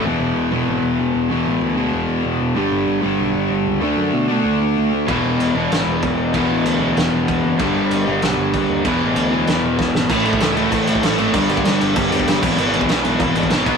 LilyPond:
<<
  \new Staff \with { instrumentName = "Overdriven electric guitar" } { \clef bass \time 4/4 \key e \mixolydian \tempo 4 = 191 <e, b, e>4. <e, b, e>2~ <e, b, e>8 | <e, b, e>4. <e, b, e>2~ <e, b, e>8 | <g, d g>4. <g, d g>2~ <g, d g>8 | <d a d'>4. <d a d'>2~ <d a d'>8 |
<e, b, e>4. <e, b, e>2~ <e, b, e>8 | <e, b, e>4. <e, b, e>2~ <e, b, e>8 | <g, d g>4. <g, d g>2~ <g, d g>8 | <e, b, e>4. <e, b, e>2~ <e, b, e>8 |
<a, e a>8 <a, e a>8 <a, e a>8 <a, e a>8 <a, e a>8 <a, e a>8 <a, e a>8 <a, e a>8 | <g, d g>8 <g, d g>8 <g, d g>8 <g, d g>8 <g, d g>8 <g, d g>8 <g, d g>8 <e, b, e>8 | <e, b, e>8 <e, b, e>8 <e, b, e>8 <e, b, e>8 <e, b, e>8 <e, b, e>8 <e, b, e>8 <b, fis b>8 | }
  \new Staff \with { instrumentName = "Overdriven electric guitar" } { \clef bass \time 4/4 \key e \mixolydian <e, b, e>4. <e, b, e>2~ <e, b, e>8 | <e, b, e>4. <e, b, e>2~ <e, b, e>8 | <g, d g>4. <g, d g>2~ <g, d g>8 | <d a d'>4. <d a d'>2~ <d a d'>8 |
<e, b, e>4. <e, b, e>2~ <e, b, e>8 | <e, b, e>4. <e, b, e>2~ <e, b, e>8 | <g, d g>4. <g, d g>2~ <g, d g>8 | <e, b, e>4. <e, b, e>2~ <e, b, e>8 |
<a, e a>8 <a, e a>8 <a, e a>8 <a, e a>8 <a, e a>8 <a, e a>8 <a, e a>8 <a, e a>8 | <g, d g>8 <g, d g>8 <g, d g>8 <g, d g>8 <g, d g>8 <g, d g>8 <g, d g>8 <e, b, e>8 | <e, b, e>8 <e, b, e>8 <e, b, e>8 <e, b, e>8 <e, b, e>8 <e, b, e>8 <e, b, e>8 <b, fis b>8 | }
  \new Staff \with { instrumentName = "Overdriven electric guitar" } { \clef bass \time 4/4 \key e \mixolydian r1 | r1 | r1 | r1 |
<e, b, e>1 | <e, b, e>1 | <g, d g>1 | <e, b, e>1 |
<a, e a>2.~ <a, e a>8 <a, e a>8 | <g, d g>2.~ <g, d g>8 <e, b, e>8~ | <e, b, e>2. <e, b, e>8 <b, fis b>8 | }
  \new Staff \with { instrumentName = "Picked electric bass" } { \clef bass \time 4/4 \key e \mixolydian e,,8 e,,8 e,,8 e,,8 gis,,8 e,,8 e,,8 e,,8 | e,,8 a,,8 d,4 e,,8 e,,8 e,,8 e,,8 | g,,8 g,,8 g,,8 g,,8 b,,8 g,,8 g,,8 cis,8 | d,8 fis,8 b,4 d,8 d,8 d,8 d,8 |
e,,8 e,,8 e,,8 e,,8 gis,,8 e,,8 e,,8 e,,8 | e,,8 a,,8 d,4 e,,8 e,,8 e,,8 fis,,8 | g,,8 g,,8 g,,8 g,,8 b,,8 g,,8 g,,8 dis,8 | e,,8 a,,8 d,4 e,,8 e,,8 e,,8 gis,,8 |
a,,4 cis,4 a,,8 a,,8 a,,8 gis,,8 | g,,8 g,,8 g,8 g,,8 g,,8 e,8 g,,8 gis,,8 | gis,,4 b,,4 gis,,8 gis,,8 gis,,8 b,,8 | }
  \new DrumStaff \with { instrumentName = "Drums" } \drummode { \time 4/4 r4 r4 r4 r4 | r4 r4 r4 r4 | r4 r4 r4 r4 | r4 r4 r4 r4 |
<cymc bd>4 cymc4 <cymc sn>4 <cymc bd>4 | <cymc bd>4 cymc4 <cymc sn>4 <cymc bd>4 | <cymc bd>4 cymc4 <cymc sn>4 <cymc bd>4 | <cymc bd>4 cymc4 <cymc sn>4 <bd sn>8 sn8 |
<cymc bd>8 cymc16 bd16 <cymc sn>8 cymc8 <cymc bd>8 cymc16 bd16 <cymc sn>8 cymc8 | <cymc bd>8 cymc16 bd16 <cymc sn>8 cymc8 <cymc bd>8 cymc16 bd16 <cymc sn>8 <cymc bd>8 | cymc8 cymc16 bd16 <cymc sn>8 cymc8 <cymc bd>8 cymc16 bd16 <cymc sn>8 <cymc bd>8 | }
>>